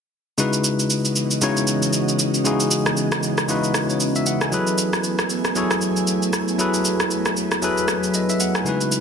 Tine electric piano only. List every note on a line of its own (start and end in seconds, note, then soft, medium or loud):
0.38 1.22 C#3 medium
0.38 1.22 G#3 medium
0.38 1.22 D#4 medium
0.38 1.22 E4 medium
0.38 1.23 F#4 medium
0.38 1.23 B4 medium
1.41 2.25 C#3 medium
1.41 2.25 G#3 medium
1.41 2.25 D#4 medium
1.41 2.26 E4 medium
1.41 2.26 F#4 medium
1.41 2.26 C#5 medium
2.44 3.28 C#3 medium
2.44 3.29 G#3 medium
2.44 3.29 D#4 medium
2.44 3.29 E4 medium
2.44 3.29 F#4 medium
2.44 3.30 G#4 medium
3.48 4.32 C#3 medium
3.48 4.32 G#3 medium
3.48 4.32 D#4 medium
3.48 4.33 E4 medium
3.48 4.33 F#4 medium
3.48 4.33 B4 medium
3.90 4.14 C#5 medium
4.16 4.26 E5 medium
4.27 4.41 F#5 medium
4.42 4.66 G#5 medium
4.52 5.35 F#3 medium
4.52 5.36 E4 medium
4.52 5.36 G#4 medium
4.52 5.36 A4 medium
4.52 5.37 B4 medium
5.55 6.39 F#3 medium
5.55 6.39 E4 medium
5.55 6.39 G#4 medium
5.55 6.40 A4 medium
5.55 6.40 C#5 medium
6.58 7.42 F#3 medium
6.58 7.43 E4 medium
6.58 7.43 G#4 medium
6.58 7.43 A4 medium
6.58 7.43 B4 medium
7.62 8.46 F#3 medium
7.62 8.46 E4 medium
7.62 8.46 G#4 medium
7.62 8.47 A4 medium
7.62 8.47 B4 loud
8.15 8.29 D#5 medium
8.30 8.40 E5 medium
8.41 8.55 F#5 medium
8.55 8.80 G#5 medium
8.64 9.00 C#3 medium
8.64 9.00 G#3 medium
8.64 9.00 D#4 medium
8.64 9.00 E4 medium
8.64 9.00 F#4 medium
8.69 9.00 B4 medium